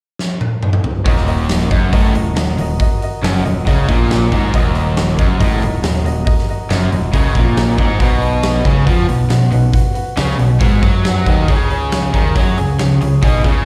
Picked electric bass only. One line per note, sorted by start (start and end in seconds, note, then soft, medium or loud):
1.06 1.67 D#1 medium
1.71 1.91 F#1 medium
1.93 2.13 A1 medium
2.14 2.34 D#1 medium
2.36 2.56 D#1 medium
2.57 2.78 D#1 medium
3.22 3.43 F#1 medium
3.45 3.65 D#1 medium
3.67 3.87 C#2 medium
3.89 4.29 A#1 medium
4.32 4.52 G#1 medium
4.54 5.15 D#1 medium
5.19 5.39 F#1 medium
5.41 5.61 A1 medium
5.62 5.82 D#1 medium
5.84 6.04 D#1 medium
6.06 6.26 D#1 medium
6.70 6.91 F#1 medium
6.92 7.12 D#1 medium
7.13 7.34 C#2 medium
7.35 7.76 A#1 medium
7.78 7.99 G#1 medium
8.00 8.61 B1 medium
8.65 8.86 C#2 medium
8.86 9.07 F2 medium
9.09 9.29 B1 medium
9.31 9.51 B1 medium
9.53 9.73 B1 medium
10.17 10.38 C#2 medium
10.39 10.60 B1 medium
10.61 10.82 G#1 medium
10.82 11.23 F#2 medium
11.26 11.47 D#2 medium
11.49 12.10 C#2 medium
12.14 12.34 D#2 medium
12.36 12.56 F#2 loud
12.57 12.78 C#2 medium
12.80 13.00 C#2 medium
13.02 13.21 C#2 medium
13.23 13.43 B1 medium
13.44 13.64 C#2 medium